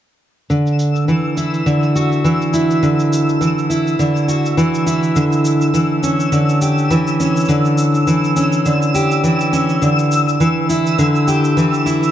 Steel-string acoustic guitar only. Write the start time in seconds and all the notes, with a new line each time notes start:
0.50 D3
1.08 E3
1.37 E4
1.66 D3
1.96 F#4
2.24 E3
2.54 E4
2.83 D3
3.41 E3
3.70 E4
3.99 D3
4.28 F#4
4.57 E3
4.86 E4
5.16 D3
5.74 E3
6.03 C#4
6.32 D3
6.61 G4
6.91 E3
7.20 C#4
7.49 D3
8.07 E3
8.36 C#4
8.65 D3
8.95 G4
9.24 E3
9.53 C#4
9.82 D3
10.40 E3
10.69 E4
10.99 D3
11.28 G4
11.57 E3
11.86 E4